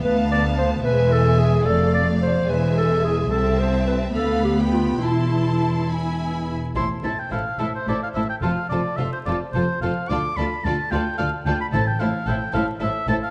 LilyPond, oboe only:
\new Staff \with { instrumentName = "Oboe" } { \time 6/8 \key a \minor \tempo 4. = 73 r2. | r2. | r2. | r2. |
c'''8 a''16 g''16 f''8 e''16 c''16 d''16 f''16 e''16 g''16 | f''8 d''8 e''16 c''16 d''8 c''8 f''8 | d'''8 b''8 a''8 g''8 f''8 g''16 b''16 | a''16 g''16 f''8 g''8 f''8 e''8 a''16 f''16 | }